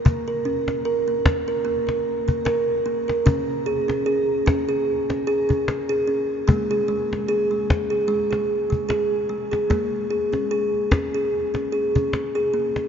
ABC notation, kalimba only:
X:1
M:4/4
L:1/16
Q:"Swing 16ths" 1/4=74
K:Bbm
V:1 name="Kalimba"
B, B D2 B B,2 B B, B2 B, B2 B, B | D2 A D A2 D A2 D A D2 A D2 | A, A A,2 A A,2 A A, A2 A, A2 A, A | A,2 A D A2 D A2 D A D2 A B,2 |]
V:2 name="Kalimba"
z16 | B,16 | B,16 | B,16 |]